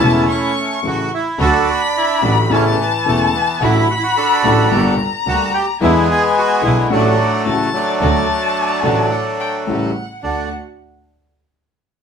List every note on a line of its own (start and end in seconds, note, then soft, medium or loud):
0.00 0.23 E1 medium
0.00 0.23 E2 medium
0.00 0.23 C#3 medium
0.00 0.23 E3 medium
0.00 0.23 A3 medium
0.00 0.80 A3 medium
0.00 0.23 C#4 medium
0.00 0.80 C#4 medium
0.00 0.23 E4 medium
0.00 0.52 E4 medium
0.00 0.23 E4 medium
0.00 0.27 A5 loud
0.28 1.07 C#6 medium
0.83 1.07 A1 medium
0.83 1.07 A2 medium
0.83 1.07 C#3 soft
0.83 1.07 E3 soft
0.83 1.07 A3 soft
0.83 1.07 A3 medium
0.83 1.07 C#4 soft
0.83 1.07 E4 medium
0.87 1.11 F#4 medium
1.14 1.39 E4 medium
1.38 1.62 D2 medium
1.38 1.63 D2 loud
1.38 1.62 D3 medium
1.38 1.62 F#3 medium
1.38 1.63 A3 medium
1.38 1.63 D4 medium
1.38 2.23 D4 medium
1.38 1.63 F#4 medium
1.38 1.68 F#4 medium
1.38 1.69 A4 loud
1.38 2.53 B5 loud
1.70 1.82 F#4 medium
1.97 2.22 E4 medium
2.22 2.46 A1 medium
2.22 2.46 A1 loud
2.22 2.46 A2 medium
2.22 2.46 D3 medium
2.22 2.46 F#3 medium
2.22 2.46 A3 medium
2.22 2.46 D4 medium
2.22 2.36 D4 medium
2.22 2.46 F#4 medium
2.50 2.74 A1 medium
2.50 2.74 A1 loud
2.50 2.74 A2 medium
2.50 2.73 C#3 medium
2.50 3.57 E3 medium
2.50 2.73 A3 medium
2.50 2.74 B3 medium
2.50 2.74 C#4 medium
2.50 2.64 C#4 medium
2.50 2.74 E4 medium
2.50 2.74 A4 medium
2.50 3.64 A5 loud
2.81 2.93 B3 medium
3.06 3.29 E1 medium
3.06 3.29 E2 medium
3.06 3.29 C#3 medium
3.06 3.29 A3 soft
3.06 3.35 A3 medium
3.06 3.29 B3 soft
3.06 3.29 B3 medium
3.06 3.29 C#4 medium
3.06 3.29 E4 medium
3.06 3.29 A4 medium
3.35 3.60 B3 medium
3.61 3.84 A1 loud
3.61 3.85 A1 medium
3.61 3.85 A2 medium
3.61 3.85 D3 medium
3.61 3.85 F#3 medium
3.61 3.85 A3 medium
3.61 3.84 D4 medium
3.61 3.84 E4 medium
3.61 3.85 E4 medium
3.61 3.88 E4 medium
3.61 3.84 F#4 medium
3.61 4.72 B5 loud
3.90 3.93 F#4 medium
3.97 4.03 E4 medium
4.03 4.16 F#4 medium
4.17 4.95 D4 medium
4.17 4.95 F#4 medium
4.17 4.95 A4 medium
4.44 4.67 A1 loud
4.44 4.67 A1 medium
4.44 4.67 A2 medium
4.44 4.67 D3 medium
4.44 4.67 F#3 medium
4.44 4.67 A3 medium
4.44 4.67 D4 medium
4.44 4.67 E4 medium
4.44 4.67 F#4 medium
4.71 4.94 G1 medium
4.71 4.94 G1 loud
4.71 4.94 G2 medium
4.71 4.94 D3 medium
4.71 4.94 G3 medium
4.71 4.94 A#3 medium
4.71 4.94 D4 medium
4.71 4.94 G4 medium
4.71 5.80 A#5 loud
5.26 5.49 D2 medium
5.26 5.49 D3 medium
5.26 5.49 G3 soft
5.26 5.49 A#3 medium
5.26 5.49 A#3 soft
5.26 5.49 D4 medium
5.26 5.53 F#4 loud
5.26 5.49 G4 medium
5.54 5.66 G4 loud
5.80 6.04 E2 medium
5.80 6.04 E2 loud
5.80 6.04 D3 medium
5.80 6.04 E3 medium
5.80 6.04 G#3 medium
5.80 6.87 G#3 medium
5.80 6.04 B3 medium
5.80 6.87 B3 medium
5.80 6.04 D4 medium
5.80 6.04 E4 medium
5.80 6.08 E4 loud
5.80 6.91 G#5 loud
6.11 6.23 G#4 loud
6.38 6.62 F#4 medium
6.62 6.85 B1 loud
6.62 6.86 B1 medium
6.62 6.86 B2 medium
6.62 6.85 D3 medium
6.62 6.85 G#3 medium
6.62 6.86 G#3 medium
6.62 6.86 B3 medium
6.62 6.86 D4 medium
6.62 6.86 E4 medium
6.62 6.77 E4 medium
6.89 7.13 A1 medium
6.89 7.13 A1 loud
6.89 7.13 A2 medium
6.89 7.13 D3 medium
6.89 7.13 F#3 medium
6.89 7.69 F#3 medium
6.89 7.13 A3 medium
6.89 7.14 A3 medium
6.89 7.70 A3 medium
6.89 7.14 D4 medium
6.89 7.43 D4 medium
6.89 7.13 F#4 medium
6.89 7.14 F#4 medium
6.89 7.44 F#5 medium
7.44 7.68 A1 medium
7.44 7.68 A2 medium
7.44 7.68 C#3 medium
7.44 7.68 F#3 soft
7.44 7.68 A3 soft
7.44 7.69 A3 soft
7.44 7.68 C#4 soft
7.44 7.68 E4 medium
7.44 7.69 F#4 medium
7.44 7.96 A5 medium
7.73 9.91 F#3 medium
7.73 9.91 A3 medium
7.73 9.64 D4 medium
8.00 8.24 D2 medium
8.00 8.24 D3 medium
8.00 8.23 F#3 medium
8.00 8.24 A3 medium
8.00 8.24 D4 medium
8.00 8.24 F#4 medium
8.00 9.07 A5 loud
8.83 9.06 A1 medium
8.83 9.06 A2 medium
8.83 9.06 D3 medium
8.83 9.06 F#3 medium
8.83 9.06 A3 medium
8.83 9.07 D4 medium
8.83 9.06 F#4 medium
8.83 9.07 F#4 medium
9.11 9.23 F#5 medium
9.40 9.52 G5 medium
9.67 9.90 A1 medium
9.67 9.90 A2 medium
9.67 9.90 C#3 medium
9.67 9.90 G3 soft
9.67 9.90 A3 soft
9.67 9.91 A3 soft
9.67 9.91 C#4 soft
9.67 9.90 E4 medium
9.67 9.91 G4 medium
9.67 10.19 F#5 medium
10.23 10.46 D2 medium
10.23 10.46 D2 soft
10.23 10.46 A3 soft
10.23 10.46 A3 medium
10.23 10.46 D4 medium
10.23 10.49 D4 medium
10.23 10.46 D4 soft
10.23 10.46 F#4 medium
10.23 10.49 F#5 medium